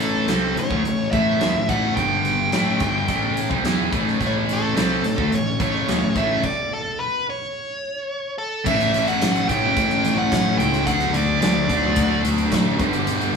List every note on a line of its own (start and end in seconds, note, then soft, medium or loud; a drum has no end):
0.00 0.24 A1 medium
0.00 0.27 A2 medium
0.00 0.28 E3 medium
0.00 0.28 A3 medium
0.00 0.58 A4 medium
0.00 closed hi-hat medium
0.28 0.55 C2 medium
0.28 0.55 C3 medium
0.28 0.55 G3 medium
0.28 0.56 C4 medium
0.28 snare loud
0.28 closed hi-hat medium
0.55 0.70 A1 medium
0.55 0.70 A2 medium
0.55 0.70 E3 medium
0.55 1.11 C#5 medium
0.55 closed hi-hat medium
0.70 0.84 D2 medium
0.70 0.83 D3 medium
0.70 0.84 A3 medium
0.70 kick loud
0.84 1.12 A1 medium
0.84 1.07 A2 medium
0.84 1.07 E3 medium
0.84 closed hi-hat medium
1.11 1.39 A1 medium
1.11 1.39 A2 medium
1.11 1.39 E3 medium
1.11 1.40 A3 medium
1.11 1.70 E5 medium
1.11 kick loud
1.11 closed hi-hat medium
1.40 1.54 D#2 medium
1.40 1.53 D#3 medium
1.40 1.54 A#3 medium
1.40 snare medium
1.40 closed hi-hat medium
1.53 1.68 A1 medium
1.53 1.66 A2 medium
1.53 1.67 E3 medium
1.67 1.95 A1 medium
1.67 1.95 A2 medium
1.67 1.95 E3 medium
1.67 1.96 A3 loud
1.67 1.96 F#5 medium
1.67 kick medium
1.67 closed hi-hat soft
1.96 2.49 G1 medium
1.96 2.51 G2 medium
1.96 2.51 D3 medium
1.96 2.52 G3 medium
1.96 3.88 G5 loud
1.96 kick medium
1.96 closed hi-hat medium
2.25 closed hi-hat medium
2.52 2.79 A1 medium
2.52 2.79 A2 medium
2.52 2.80 E3 medium
2.52 2.80 A3 medium
2.52 snare loud
2.52 closed hi-hat medium
2.79 3.07 G1 medium
2.79 3.07 G2 medium
2.79 3.07 D3 medium
2.79 3.07 G3 medium
2.79 kick loud
2.79 closed hi-hat medium
3.08 3.48 A1 loud
3.08 3.49 A2 medium
3.08 3.50 E3 medium
3.08 3.50 A3 medium
3.08 kick medium
3.08 closed hi-hat medium
3.37 closed hi-hat medium
3.50 3.63 C2 medium
3.50 3.63 C3 medium
3.50 3.63 G3 medium
3.50 kick loud
3.63 3.90 E2 medium
3.63 3.90 E3 medium
3.63 3.91 B3 medium
3.63 3.91 E4 medium
3.63 snare medium
3.63 closed hi-hat medium
3.91 4.19 A1 medium
3.91 4.18 A2 medium
3.91 4.18 E3 medium
3.91 4.19 A3 loud
3.91 kick loud
3.91 closed hi-hat medium
4.08 snare soft
4.19 4.73 A1 medium
4.19 4.74 A2 medium
4.19 4.75 E3 medium
4.19 4.75 A3 medium
4.19 kick medium
4.19 closed hi-hat medium
4.27 4.33 C#5 medium
4.49 5.37 A4 medium
4.49 closed hi-hat medium
4.75 5.02 C2 medium
4.75 5.02 C3 medium
4.75 5.03 G3 medium
4.75 5.03 C4 loud
4.75 snare loud
4.75 closed hi-hat medium
5.03 5.17 A1 medium
5.03 5.15 A2 medium
5.03 5.16 E3 medium
5.03 closed hi-hat medium
5.16 5.31 D2 medium
5.16 5.30 D3 medium
5.16 5.30 A3 loud
5.16 kick loud
5.31 5.58 A1 medium
5.31 5.54 A2 medium
5.31 5.54 E3 medium
5.31 5.61 C#5 loud
5.31 closed hi-hat medium
5.59 5.86 A1 medium
5.59 5.86 A2 medium
5.59 5.87 E3 medium
5.59 5.87 A3 medium
5.59 6.17 C#5 medium
5.59 kick loud
5.59 closed hi-hat medium
5.87 6.01 D#2 medium
5.87 6.00 D#3 medium
5.87 6.01 A#3 medium
5.87 snare medium
5.87 closed hi-hat medium
6.01 6.15 A1 medium
6.01 6.13 A2 medium
6.01 6.14 E3 medium
6.14 6.41 A1 medium
6.14 6.42 A2 medium
6.14 6.42 E3 medium
6.14 6.43 A3 loud
6.14 6.44 E5 medium
6.14 kick loud
6.14 closed hi-hat soft
6.43 6.70 D5 medium
6.43 kick medium
6.43 crash medium
6.73 7.00 A4 medium
7.00 7.26 B4 medium
7.30 8.35 C#5 medium
8.38 8.67 A4 medium
8.65 8.92 A1 medium
8.65 9.07 A2 medium
8.65 8.92 E3 medium
8.65 8.82 A3 medium
8.65 10.84 C#4 medium
8.65 8.80 C#4 loud
8.65 10.84 E4 medium
8.65 8.78 E4 medium
8.65 10.84 A4 medium
8.65 9.09 E5 loud
8.65 kick medium
8.65 crash medium
8.80 8.93 A3 medium
8.80 8.93 C#4 medium
8.80 8.94 E4 medium
8.80 closed hi-hat soft
8.93 9.19 A1 medium
8.93 9.20 E3 medium
8.93 9.21 A3 medium
8.93 9.21 C#4 medium
8.93 9.21 E4 medium
8.93 closed hi-hat medium
9.08 9.48 F#5 loud
9.08 closed hi-hat soft
9.21 9.48 A1 medium
9.21 9.62 A2 medium
9.21 9.48 E3 loud
9.21 9.36 A3 medium
9.21 9.36 C#4 medium
9.21 9.34 E4 medium
9.21 snare loud
9.21 closed hi-hat loud
9.35 9.49 A3 medium
9.35 9.49 C#4 medium
9.35 9.49 E4 medium
9.35 closed hi-hat soft
9.47 9.75 A1 medium
9.47 10.85 A2 medium
9.47 10.85 E3 medium
9.47 10.85 A3 medium
9.47 10.18 G5 loud
9.47 muted distorted electric guitar stroke soft
9.47 kick medium
9.47 closed hi-hat medium
9.62 9.91 A3 medium
9.62 9.90 C#4 medium
9.62 9.89 E4 medium
9.77 10.02 A1 medium
9.77 kick loud
9.77 closed hi-hat medium
9.90 10.03 A3 medium
9.90 10.04 C#4 medium
9.90 10.04 E4 medium
9.90 closed hi-hat soft
10.04 10.30 A1 medium
10.04 10.30 E3 medium
10.04 10.31 A3 medium
10.04 10.31 C#4 medium
10.04 10.31 E4 medium
10.04 closed hi-hat medium
10.18 10.58 F#5 medium
10.31 10.58 A1 medium
10.31 10.73 A2 medium
10.31 10.73 E3 medium
10.31 10.46 A3 loud
10.31 10.45 C#4 loud
10.31 10.44 E4 loud
10.31 kick medium
10.31 snare medium
10.31 closed hi-hat medium
10.45 10.74 A3 medium
10.45 10.73 C#4 medium
10.45 10.72 E4 medium
10.58 10.85 C#2 medium
10.58 10.87 G5 loud
10.58 closed hi-hat medium
10.73 10.86 A3 medium
10.73 10.86 C#4 medium
10.73 10.85 E4 medium
10.73 closed hi-hat soft
10.87 11.13 D2 loud
10.87 11.13 D3 medium
10.87 11.01 F#3 medium
10.87 11.00 A3 medium
10.87 12.78 D4 medium
10.87 10.99 D4 loud
10.87 12.78 F#4 medium
10.87 12.78 A4 medium
10.87 11.15 F#5 loud
10.87 kick medium
10.87 closed hi-hat medium
11.00 11.14 F#3 medium
11.00 11.14 A3 medium
11.00 11.16 D4 medium
11.00 closed hi-hat soft
11.13 11.41 D2 medium
11.13 11.40 D3 medium
11.13 11.41 F#3 medium
11.13 11.41 A3 medium
11.13 11.43 D4 loud
11.13 11.40 D5 medium
11.13 closed hi-hat medium
11.41 11.68 D2 medium
11.41 11.67 D3 medium
11.41 11.55 F#3 medium
11.41 11.54 A3 medium
11.41 11.54 D4 loud
11.41 12.20 D5 medium
11.41 snare loud
11.41 closed hi-hat medium
11.54 11.67 F#3 medium
11.54 11.68 A3 medium
11.54 11.68 D4 medium
11.68 11.95 D2 medium
11.68 12.79 A3 medium
11.68 12.78 D4 medium
11.68 muted distorted electric guitar stroke soft
11.68 kick medium
11.68 closed hi-hat medium
11.73 12.80 D3 medium
11.82 12.11 F#3 medium
11.82 12.10 A3 medium
11.82 12.08 D4 medium
11.96 12.23 D2 loud
11.96 kick loud
11.96 closed hi-hat loud
12.09 12.23 F#3 medium
12.09 12.24 A3 medium
12.09 12.24 D4 medium
12.23 12.50 D2 medium
12.23 12.50 D3 medium
12.23 12.51 F#3 medium
12.23 12.51 A3 medium
12.23 12.52 D4 medium
12.23 closed hi-hat medium
12.38 closed hi-hat soft
12.51 12.78 A1 medium
12.51 12.78 D3 loud
12.51 12.66 F#3 loud
12.51 12.65 A3 medium
12.51 12.64 D4 loud
12.51 kick medium
12.51 snare loud
12.51 closed hi-hat medium
12.65 12.79 F#3 medium
12.65 12.78 A3 medium
12.65 12.78 D4 medium
12.79 13.06 G1 medium
12.79 13.06 G2 loud
12.79 13.06 D3 medium
12.79 12.95 G3 medium
12.79 12.93 B3 loud
12.79 13.36 D4 medium
12.79 12.92 D4 loud
12.79 13.36 G4 medium
12.79 13.36 B4 medium
12.79 kick loud
12.79 closed hi-hat medium
12.93 13.07 G3 soft
12.93 13.07 B3 medium
12.93 13.07 D4 medium
12.93 closed hi-hat medium
13.07 13.33 G1 medium
13.07 13.36 G2 medium
13.07 13.32 D3 medium
13.07 13.21 G3 medium
13.07 13.20 B3 medium
13.07 13.18 D4 loud
13.07 closed hi-hat medium
13.19 13.34 G3 medium
13.19 13.34 B3 medium
13.19 13.34 D4 medium
13.19 closed hi-hat soft
13.33 13.36 D3 medium